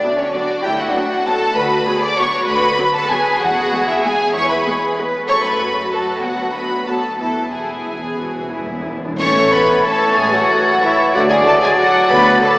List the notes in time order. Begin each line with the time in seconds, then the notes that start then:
Already playing: D4 D5
0.03 F#3 B3
0.17 C#4 C#5
0.34 F#3 B3 D4 F#4 D5
0.63 D2 E4 G4 G5
0.78 F#4 F#5
0.94 F#3 B3 D4
1.25 F#3 B3 F#4 A4 A5
1.55 D2 F#4 B4 B5
1.86 F#3 B3 G#4
2.03 D5 D6
2.18 F#3 B3 F#4 C#5 C#6
2.47 D2 B4 B5
2.78 F#3 B3 B4
2.95 A4 A5
3.10 F#3 B3 G#4 G#5
3.41 E2 F#4 G#4 F#5
3.72 G#3 B3
3.88 E4 E5
4.04 G#3 B3 G#4 G#5
4.34 E2 E4 C#5 C#6
4.49 B4 B5
4.66 G#3 B3 G#4
4.97 G#3 B3 B4
5.28 F#2 F#3 A3 A4 C#5 C#6
5.43 B4 B5
5.60 F#4
5.91 F#3 A3 A4 A5
6.22 D2 F#3 B3 F#4 F#5
6.53 F#3 B3 B4 B5
6.87 F#3 B3 F#4 A4 A5
7.19 E2 E3 B3 E4 A4 A5
7.27 E2
7.35 E2
7.43 E2
7.50 E2 E3 B3 E4 G#4 G#5
7.58 E2
7.67 E2
7.74 E2
7.83 E2
7.90 E2
7.98 E2
8.03 E2 G#4
8.13 E2
8.20 E2 F#4
8.27 E2
8.35 E2
8.42 E2
8.50 E2 E4
8.58 E2
8.66 E2
8.74 E2
8.82 E2
8.90 E2
8.97 E2
9.03 E2 D4
9.12 E2
9.18 A1 A2 E3 C#4 A4 C#5 C#6 A6, concert bass drum, crash
9.52 B3 B4 B5
9.86 A3 A4 C#5 A5
10.16 A1 A2 G#3 G#4 G#5
10.32 F#3 F#4 F#5
10.50 A4
10.83 E3 E4 C#5 E5
11.14 D2 D3 F#3 F#4 D5 F#5 A6
11.29 G#3 G#4 G#5
11.45 A3 A4 A5
11.62 G#3 G#4 G#5
11.78 F#3 F#4 F#5
12.10 D2 D3 B3 F#4 B4 B5
12.35 B5
12.40 A3 A4 A5